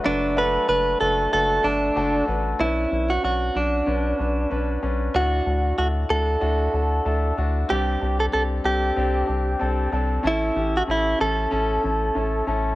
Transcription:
X:1
M:4/4
L:1/16
Q:"Swing 16ths" 1/4=94
K:Bm
V:1 name="Clean electric guitar"
D2 B2 B2 A2 A2 D4 z2 | E3 F F2 D8 z2 | F4 F2 A8 z2 | G3 A A2 G8 z2 |
E3 F E2 A8 z2 |]
V:2 name="Grand piano"
[A,DFB]2 [A,DFA]2 [A,DFB]2 [A,DFB]2 [A,DFB]2 [A,DFA]2 [A,DFA]2 [A,DFB]2 | [CDB]2 [CDB]2 [CDd]2 [CDF]2 [CDB]2 [CDB]2 [CDB]2 [CDB]2 | [DEF]2 [DEF]2 [DEA]2 [DEF]2 [DEF]2 [DEA]2 [DEAe]2 [DEFa]2 | [=CDG]2 [CDG]2 [CDG]2 [CDA]2 [CDG]2 [CDG]2 [CDA]2 [CDA]2 |
[CEA]2 [CEG]2 [CEA]2 [CEA]2 [CEA]2 [CEA]2 [CEA]2 [CEA]2 |]
V:3 name="Grand piano" clef=bass
F,6 z8 z2 | z16 | A,,6 z8 z2 | G,,6 z8 z2 |
z16 |]
V:4 name="Analog synth bass" clef=bass
F,,,4 F,,,2 F,,,2 F,,,2 G,,,2 F,,,2 A,,,2 | B,,,2 B,,,2 B,,,2 B,,,2 B,,,2 B,,,2 B,,,2 B,,,2 | D,,2 D,,2 D,,2 D,,2 D,,2 D,,2 D,,2 D,,2 | =C,,2 C,,2 C,,2 C,,2 C,,2 C,,2 C,,2 C,,2 |
A,,,2 A,,,2 A,,,2 A,,,2 A,,,2 A,,,2 A,,,2 A,,,2 |]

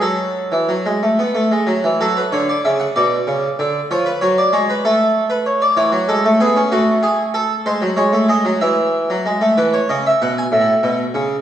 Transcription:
X:1
M:6/8
L:1/16
Q:3/8=63
K:F#m
V:1 name="Harpsichord"
A8- A2 z2 | A B c d e f d6 | c B c d c B A3 B c d | c2 A2 G2 F2 G2 A2 |
^B2 c2 ^d2 e6 | [K:E] B c d e f g e6 |]
V:2 name="Harpsichord" clef=bass
F,3 E, F, G, A, B, A, G, F, E, | F,2 D,2 C,2 B,,2 C,2 D,2 | ^E,2 F,2 G,2 A,6 | E, F, G, A, B, C A,6 |
G, F, G, A, G, F, E,3 F, G, A, | [K:E] E,2 C,2 B,,2 A,,2 B,,2 C,2 |]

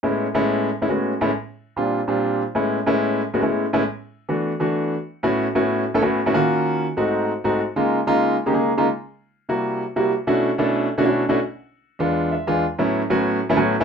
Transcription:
X:1
M:4/4
L:1/16
Q:1/4=190
K:A
V:1 name="Grand piano"
[A,,G,B,CE]3 z [A,,G,B,CE]4 z2 [A,,G,B,CE] [A,,G,B,CF]3 z [A,,G,B,CE] | z6 [_B,,=G,=CD=F]3 z [B,,G,CDF]4 z2 | [A,,G,B,CE]3 z [A,,G,B,CE]4 z2 [A,,G,B,CF] [A,,G,B,CE]3 z [A,,G,B,CE] | z6 [E,A,B,DF]3 z [E,A,B,DF]4 z2 |
z2 [A,,B,CEF]3 z [A,,B,CEF]4 z [A,,B,CEA] [A,,B,CEF]2 z [A,,B,CEF] | [^D,^A,C=F^F]6 z2 [G,,=A,^B,^DF]4 z2 [G,,A,B,DF]2 | z2 [C,G,^A,^D^E]3 z [C,G,A,DE]4 z [C,G,A,D=G] [C,^G,A,D^G]2 z [C,G,A,DE] | z8 [=C,=G,_B,EF]4 z2 [C,G,B,EF]2 |
z2 [B,,A,CDEF]3 z [B,,A,CDEA]4 z [B,,A,CDEF] [B,,A,CDEF]2 z [B,,A,CDEF] | z8 [E,,G,B,D=F]4 e2 [E,,G,B,DFg]2 | z2 [A,,F,B,CE]3 z [A,,F,B,CF]4 z [A,,F,B,CE] [A,,F,B,CF]2 z [A,,F,B,CE] |]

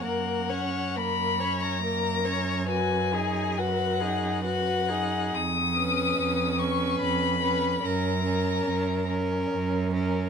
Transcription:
X:1
M:3/4
L:1/16
Q:1/4=70
K:F#
V:1 name="Violin"
f4 b3 a4- a | g4 f4 f4 | d'6 c'2 b4 | a6 z6 |]
V:2 name="Violin"
A2 c2 A2 c2 A2 c2 | B2 G2 B2 G2 B2 G2 | z2 B4 B4 B2 | A2 A4 A4 A2 |]
V:3 name="Viola"
A,2 C2 A,2 C2 A,2 C2 | F2 D2 F2 D2 F2 D2 | z2 C4 C4 C2 | C2 C4 C4 C2 |]
V:4 name="Cello" clef=bass
F,,12- | F,,12 | E,,4 E,,4 E,,4 | F,,4 F,,4 F,,4 |]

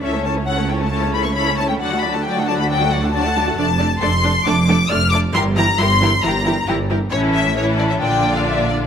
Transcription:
X:1
M:4/4
L:1/16
Q:1/4=135
K:D
V:1 name="Violin section"
e2 a2 f2 g a3 b c' b2 a g | f2 b a g2 a b g2 f a a4 | [K:Dm] a4 c'4 d'4 f'2 d'2 | c'2 b2 c'4 b4 z4 |
^c2 e2 c2 d e g3 f e2 d2 |]
V:2 name="Violin section"
[Ac] [Ac] [Ac] [Ac] [Ac] [Ac] [Ac] [Ac] [Ac] [Ac] [Ac] [Ac] [Ac] [Ac] [Ac] [Ac] | [Fd] [Af] [Fd] [Af] [Fd] [Af] [Fd] [Af] [Fd] [Af] [Fd] [Af] [Fd] [Af] [Fd] [Af] | [K:Dm] [Ad]2 [Ad]2 [Ad]2 [Ad]2 [Ad]2 [Ad]2 [Ad]2 [Ad]2 | [GB]2 [GB]2 [GB]2 [GB]2 [GB]2 [GB]2 [GB]2 [GB]2 |
[EA]4 [EA]4 [Fd]8 |]
V:3 name="Viola section"
[CE] [A,C] [CE] [A,C] [CE] [A,C] [CE] [A,C] [CE] [A,C] [CE] [A,C] [CE] [A,C] [CE] [A,C] | [F,D] [A,F] [F,D] [A,F] [F,D] [A,F] [F,D] [A,F] [F,D] [A,F] [F,D] [A,F] [F,D] [A,F] [F,D] [A,F] | [K:Dm] [A,D]2 [A,D]2 [A,D]2 [A,D]2 [A,D]2 [A,D]2 [A,D]2 [A,D]2 | [E,E]2 [E,E]2 [E,E]2 [E,E]2 [E,E]2 [E,E]2 [E,E]2 [E,E]2 |
[E,^C]4 [E,C]4 [D,D]8 |]
V:4 name="Cello section" clef=bass
C,16 | D,16 | [K:Dm] F,,4 F,,4 F,,4 F,,4 | G,,4 G,,4 G,,4 G,,4 |
A,,8 B,,8 |]
V:5 name="Double bass section" clef=bass
C,,16 | D,,16 | [K:Dm] F,,,4 F,,,4 F,,,4 F,,,4 | G,,,4 G,,,4 G,,,4 G,,,4 |
A,,,8 B,,,8 |]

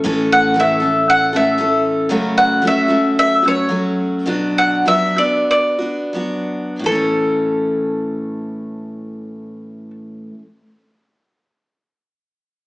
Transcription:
X:1
M:4/4
L:1/8
Q:1/4=94
K:A
V:1 name="Mandolin"
z f e2 f e2 z | z f e2 e c2 z | z f e d d3 z | A8- |
A8 |]
V:2 name="Steel-string acoustic guitar"
[A,,E,A,CA]2 [E,A,CA] [A,CA]2 [A,CA] [E,A,CA]2 | [F,,C,F,A,CF]2 [F,A,CF] [F,A,CF]2 [F,A,CF] [F,A,CF]2 | [B,,F,B,DF]2 [F,B,DF] [B,DF]2 [B,DF] [F,B,DF]2 | [A,,E,A,CA]8- |
[A,,E,A,CA]8 |]
V:3 name="Upright bass" clef=bass
A,,,8 | z8 | z8 | z8 |
z8 |]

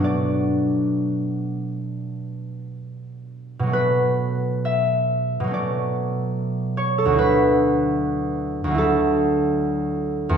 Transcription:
X:1
M:4/4
L:1/16
Q:1/4=68
K:Bm
V:1 name="Harp"
[Bd]16 | B4 e4 d6 c A | B8 A8 |]
V:2 name="Harp"
[B,,F,A,B,D]16 | [B,,F,A,C]8 [B,,F,A,C]8 | [D,,F,A,E]8 [D,,F,A,E]8 |]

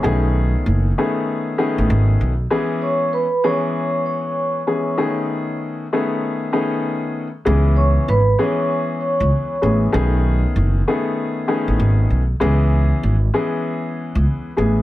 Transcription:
X:1
M:4/4
L:1/16
Q:"Swing 16ths" 1/4=97
K:C#m
V:1 name="Vibraphone"
z16 | z2 [cc']2 [Bb]2 [cc']4 [cc']6 | z16 | z2 [cc']2 [Bb]2 [cc']4 [cc']6 |
z16 | z16 |]
V:2 name="Upright piano"
[D,A,B,CG]6 [D,A,B,CG]4 [D,A,B,CG]4 z2 | [E,G,B,CG]4 z2 [E,G,B,CG]8 [E,G,B,CG]2 | [D,A,B,CG]6 [D,A,B,CG]4 [D,A,B,CG]4 z2 | [E,G,B,CG]4 z2 [E,G,B,CG]8 [E,G,B,CG]2 |
[D,A,B,CG]6 [D,A,B,CG]4 [D,A,B,CG]4 z2 | [E,G,B,CG]4 z2 [E,G,B,CG]8 [E,G,B,CG]2 |]
V:3 name="Upright bass" clef=bass
B,,,4 F,,,2 z4 z A,,, G,,,2 B,,,2 | z16 | z16 | C,,4 G,,,2 z4 z C,, z2 A,,,2 |
B,,,4 F,,,2 z4 z A,,, G,,,2 B,,,2 | C,,4 G,,,2 z4 z C,, z2 A,,,2 |]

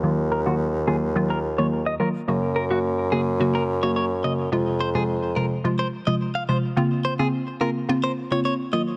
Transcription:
X:1
M:4/4
L:1/16
Q:1/4=107
K:Bbm
V:1 name="Clean electric guitar"
z2 B G z2 A z2 B z d z e B z | z2 B G z2 A z2 B z d d z e z | z2 c A z2 B z2 c z e z f c z | z2 c A z2 B z2 c z d d z e z |]
V:2 name="Synth pluck" clef=bass
[E,G,B,F]3 [E,G,B,F] z2 [E,G,B,F] z [E,G,B,F] z2 [E,G,B,F] z2 [E,G,B,F] z | [D,G,B,G]3 [D,G,B,G] z2 [D,G,B,G] z [D,G,B,G] z2 [D,G,B,G] z2 [D,G,B,G] z | [C,F,A,F]3 [C,F,A,F] z2 [C,F,A,F] z [C,F,A,F] z2 [C,F,A,F] z2 [C,F,A,F] z | [D,B,CF]3 [D,B,CF] z2 [D,B,CF] z [D,B,CF] z2 [D,B,CF] z2 [E,G,B,F] z |]
V:3 name="Bassoon" clef=bass
E,,12- E,,2 z2 | G,,16 | F,,8 z8 | z16 |]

